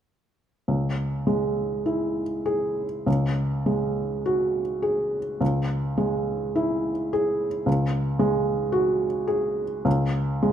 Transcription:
felt piano
0.68 C#2
1.27 G#3
1.86 E4
2.46 G#4
3.06 C#2
3.66 G#3
4.26 F#4
4.82 G#4
5.41 C#2
5.98 G#3
6.55 E4
7.13 G#4
7.66 C#2
8.19 G#3
8.72 F#4
9.28 G#4
9.85 C#2
10.43 G#3

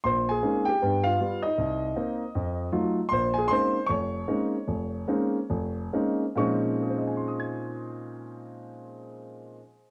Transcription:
grand piano
0.04 A#1 C5 C6
0.29 G#4 G#5
0.43 G#3 A#3 C4 C#4 D#4
0.65 G4 G5
0.82 G2 B3
1.04 F4 F5
1.20 G3 B3 F4
1.43 D#4 D#5
1.58 C2
1.96 A#3 C4 D#4
2.35 F2
2.72 F#3 A3 D#4 F4
3.09 A#1 C6
3.13 C5
3.34 G#5
3.38 G#4
3.48 G#3 A#3 C4 C#4 D#4 C6
3.52 C5
3.87 F1 C#6
3.91 C#5
4.28 G#3 A#3 C4 C#4 D#4
4.68 F1
5.08 G#3 A#3 C4 C#4 D#4
5.50 F1
5.93 G#3 A#3 C4 C#4 D#4
6.36 A#2 F3 G#3 C4 C#4 D#4 C#6
6.82 G#4
6.90 C5
6.98 D#5
7.07 G#5
7.17 C6
7.28 D#6
7.40 G#6

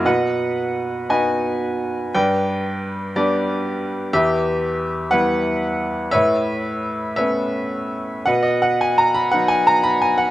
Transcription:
grand piano
0.05 B2 B4 D#5 F#5
1.09 B3 D#4 F#4 B4 D#5 G#5
2.15 G2 B4 D5 G5
3.16 G3 B3 D4 G4 B4 D5
4.13 E2 G4 B4 E5
5.11 G3 B3 E4 B4 F#5
6.11 A2 B4 C#5 E5
7.16 A3 B3 C#4 B4 C#5 E5
8.26 B2 B4 D#5 F#5
8.43 D#5
8.62 F#5
8.81 G#5
8.98 A#5
9.15 B5
9.32 F#3 B3 D#4 F#5
9.48 G#5
9.67 A#5
9.84 B5
10.02 G#5
10.18 F#5

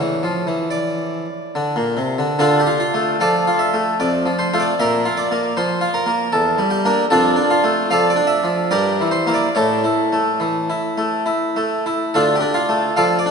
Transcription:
harpsichord
Already playing: C#5
0.00 E3
0.23 F3
0.47 E3
0.71 D5
1.55 D3
1.76 A#2
1.97 C3
2.18 D3
2.39 D3 D4 F4 A4
2.60 G4
2.67 F4
2.80 F4
2.94 A3
3.20 F3 A4 D5 F5
3.47 F4
3.59 E5
3.74 A3
4.00 F2 D5
4.26 F3
4.39 C5
4.53 A3 F4
4.60 D5
4.80 A#2 A#4 E5
5.05 F4
5.17 D5
5.32 A#3
5.57 F3 C5
5.81 F4
5.94 A#4
6.06 A#3
6.33 E2 A4
6.58 G3
6.70 G4
6.85 A#3 D4
7.10 F2 D4 F4 A4
7.36 D4
7.51 F4
7.64 A3
7.90 F3 A4 D5 F5
8.10 D5
8.16 D4
8.27 E5
8.44 F3
8.71 G2 G4 A#4 D5
9.01 E3
9.11 C5
9.27 A#3 E4
9.34 D5
9.55 A2 E4 A4 C#5
9.84 E4
10.13 A3
10.40 E3
10.70 E4
10.98 A3
11.26 E4
11.56 A3
11.86 E4
12.14 D2 D4 F4 A4
12.36 G4
12.41 D4
12.54 F4
12.69 A3
12.96 F3 A4 D5 F5
13.19 D5
13.26 D4

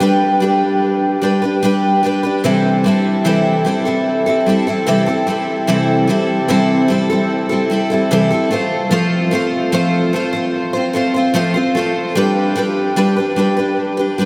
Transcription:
twelve-string acoustic guitar
0.00 G3 D4 G4 B4
0.40 G3 D4 G4 B4
1.22 G3 D4 G4 B4
1.42 D4 G4 B4
1.63 G3 D4 G4 B4
2.03 G3 D4 G4 B4
2.23 D4 G4 B4
2.44 C3 E3 G3 C4 E4 A4
2.84 G3 C4 E4 A4
3.25 C3 E3 G3 C4 E4 A4
3.65 G3 C4 E4 A4
3.85 G3 C4 E4 A4
4.26 G3 C4 E4 A4
4.46 G3 C4 E4 A4
4.67 G3 C4 E4 A4
4.87 C3 E3 G3 C4 E4 A4
5.06 G3 C4 E4 A4
5.27 G3 C4 E4 A4
5.67 C3 E3 G3 C4 E4 A4
6.07 G3 C4 E4 A4
6.48 C3 E3 G3 C4 E4 A4
6.88 G3 C4 E4 A4
7.10 G3 C4 E4 A4
7.49 G3 C4 E4 A4
7.70 G3 C4 E4 A4
7.90 G3 C4 E4 A4
8.11 C3 E3 G3 C4 E4 A4
8.31 G3 C4 E4 A4
8.51 A3 C4 F4 C5
8.91 F3 A3 C4 F4 C5
9.31 A3 C4 F4 C5
9.72 F3 A3 C4 F4 C5
10.13 A3 C4 F4 C5
10.33 C4 F4 C5
10.73 C4 F4 C5
10.93 A3 C4 F4 C5
11.14 C4 F4 C5
11.34 F3 A3 C4 F4 C5
11.54 C4 F4 C5
11.75 A3 C4 F4 C5
12.15 G3 D4 G4 B4
12.56 G3 D4 G4 B4
12.96 G3 D4 G4 B4
13.16 D4 G4 B4
13.36 G3 D4 G4 B4
13.57 D4 G4 B4
13.97 D4 G4 B4
14.18 G3 D4 G4 B4

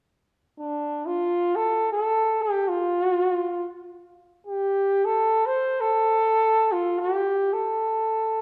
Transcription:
flugelhorn
0.59 D4
1.06 F4
1.56 A4
1.93 A4
2.42 G4
2.69 F4
4.47 G4
5.05 A4
5.46 C5
5.81 A4
6.72 F4
7.00 G4
7.54 A4

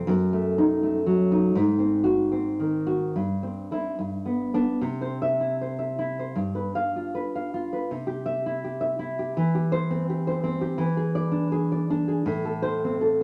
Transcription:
nylon-string guitar
Already playing: A3
0.07 F#2
0.33 A3
0.58 D#4
0.83 A3
1.06 F#3
1.32 D#4
1.55 G#2
1.79 C4
2.04 F#4
2.32 C4
2.60 D#3
2.87 F#4
3.16 G2
3.43 C4
3.71 C4 E4
3.99 G2
4.26 B3
4.54 B3 D4
4.81 C3
5.01 C5
5.22 E5
5.40 E4
5.61 C5
5.79 E5
5.99 E4
6.19 C5
6.35 G2
6.55 B4
6.75 F5
6.96 F4
7.15 B4
7.35 F5
7.54 F4
7.73 B4
7.91 C3
8.07 G4
8.26 E5
8.46 E4
8.64 G4
8.81 E5
8.99 E4
9.19 G4
9.37 E3
9.55 G4
9.72 C5
9.91 C4
10.09 G4
10.27 C5
10.44 C4
10.61 G4
10.78 E3
10.97 G#4
11.15 D5
11.32 D4
11.52 G#4
11.72 D5
11.90 D4
12.08 G#4
12.26 A2
12.45 A4
12.62 C5
12.84 C4
13.01 A4

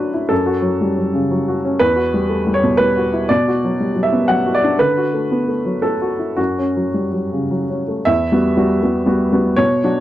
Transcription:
upright piano
Already playing: D3 F#3 D4 E4 F#4 B4
0.14 E4
0.29 F#2 A4
0.46 F#4
0.62 F#3
0.81 G3
0.98 F#3
1.14 C#3
1.31 F#3
1.48 F#4
1.65 C#4
1.79 E2 B4
1.96 F#4
2.14 G3
2.29 A3
2.47 G3
2.54 C#5
2.63 B2
2.77 G3 B4
2.97 F#4
3.13 E4
3.29 B2 D5
3.48 F#4
3.65 F#3
3.80 G3
3.95 F#3
4.03 E5
4.12 B3
4.28 F#3 F#5
4.46 F#4
4.54 D5
4.64 D4
4.79 D3 B4
4.97 F#4
5.14 A3
5.32 B3
5.48 A3
5.66 F#3
5.82 A3 A4
6.02 F#4
6.19 E4
6.37 F#2 F#4
6.58 C#4
6.77 F#3
6.94 G3
7.12 F#3
7.32 C#3
7.51 F#3
7.70 C#4
7.88 A3
8.05 E2 E5
8.32 G3 B3 F#4
8.57 G3 B3 F#4
8.83 G3 B3 F#4
9.06 G3 B3 F#4
9.33 G3 B3 F#4
9.56 B2 C#5
9.84 F#3 D4 F#4

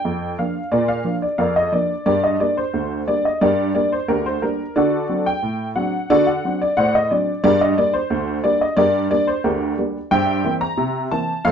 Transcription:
honky-tonk piano
Already playing: G5
0.05 F2
0.39 F3 A#3 D4 F5
0.72 A#2 F4 A#4 D5
0.88 F5
1.05 F3 A#3 D4
1.22 D5
1.38 F2 A#4 D5 F5
1.56 D#5
1.72 F3 A#3 D4 D5
2.06 G2 G4 A#4 D5
2.24 D#5
2.40 G3 A#3 D4 D5
2.57 C5
2.74 D2
3.08 G3 A#3 D4 D5
3.25 D#5
3.41 G2 G4 A#4 D5
3.75 G3 A#3 D4 D5
3.92 C5
4.08 D2 D4 G4 A#4
4.26 C5
4.42 G3 A#3 D4 A#4
4.76 D3 F#4 A4 D5
5.09 F#3 C4 D4
5.26 G5
5.43 A2
5.76 F#3 C4 D4 F#5
6.10 D3 F#4 A4 D5
6.27 F#5
6.45 F#3 C4 D4
6.61 D5
6.77 A2 C5 D5 F#5
6.95 D#5
7.11 F#3 C4 D4 D5
7.44 G2 G4 A#4 D5
7.61 D#5
7.78 G3 A#3 D4 D5
7.94 C5
8.10 D2
8.44 G3 A#3 D4 D5
8.61 D#5
8.77 G2 G4 A#4 D5
9.11 G3 A#3 D4 D5
9.27 C5
9.44 D2 D4 G4 A#4
9.78 G3 A#3 D4
10.11 G2 C5 E5 G5
10.45 E3 A#3 C4
10.61 A#5
10.78 C3
11.11 E3 A#3 C4 A5
11.45 F2 A3 A4 C5 F5

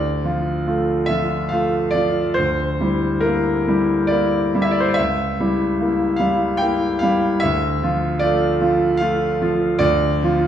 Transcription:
grand piano
Already playing: D2 D5
0.24 F3 F4
0.67 A3 F4
1.06 F3 E5
1.10 F4
1.49 A3 F4 F5
1.91 D5
1.95 F3 F4
2.34 D2 C5
2.80 G3 E4
3.20 A#3 E4 A#4
3.68 G3 E4
4.07 A#3 E4 D5
4.55 G3 E4
4.62 E5
4.71 D5
4.80 C5
4.89 D5
4.94 E5
4.98 C#2
5.40 G3 E4
5.80 A#3 E4
6.16 G3 E4 F5
6.57 A#3 G5
6.61 E4
6.99 G3 E4 F5
7.40 D2 E5
7.83 F3 F4
8.19 A3 F4 D5
8.61 F3 F4
8.97 A3 F5
9.02 F4
9.42 F3 F4
9.78 D2 D5
10.23 F3 F4

